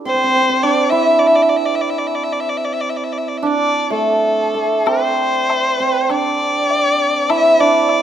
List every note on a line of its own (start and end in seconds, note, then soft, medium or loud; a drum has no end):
0.00 0.63 D4 medium
0.00 0.69 E4 medium
0.00 0.51 G4 medium
0.00 0.59 A4 medium
0.05 0.14 C4 medium
0.05 0.64 C5 medium
0.14 0.23 C4 soft
0.24 0.28 C4 medium
0.29 0.35 C4 soft
0.35 0.41 C4 soft
0.41 0.49 C4 soft
0.49 4.50 C4 medium
0.63 3.42 D4 medium
0.63 0.92 D5 medium
0.90 4.39 E4 medium
0.90 1.21 E5 medium
1.19 1.28 D5 medium
1.27 1.37 E5 medium
1.35 1.44 D5 medium
1.42 1.51 E5 medium
1.49 1.58 D5 medium
1.57 1.67 E5 medium
1.66 1.77 D5 medium
1.75 1.83 E5 medium
1.81 1.91 D5 medium
1.90 2.00 E5 medium
1.98 2.09 D5 medium
2.07 2.16 E5 medium
2.15 2.25 D5 medium
2.23 2.34 E5 medium
2.32 2.42 D5 medium
2.40 2.51 E5 medium
2.49 2.59 D5 medium
2.57 2.66 E5 medium
2.65 2.74 D5 medium
2.73 2.82 E5 medium
2.80 2.91 D5 medium
2.90 2.98 E5 medium
2.96 3.05 D5 medium
3.04 3.14 E5 medium
3.13 3.20 D5 medium
3.18 3.30 E5 medium
3.28 3.39 D5 medium
3.37 3.48 E5 medium
3.43 6.09 D4 medium
3.43 3.92 D5 medium
3.90 4.54 A3 medium
3.90 4.88 A4 medium
4.54 8.02 A3 soft
4.86 5.79 C4 medium
4.86 6.12 C5 medium
4.86 high woodblock medium
5.50 high woodblock soft
5.50 low woodblock soft
5.80 8.02 C4 medium
6.10 7.60 D4 medium
6.10 7.32 D5 medium
6.10 high woodblock soft
6.70 low woodblock soft
7.30 8.02 E4 medium
7.30 7.62 E5 medium
7.30 high woodblock medium
7.60 8.02 D4 medium
7.60 8.02 D5 medium
7.89 high woodblock soft
7.89 low woodblock soft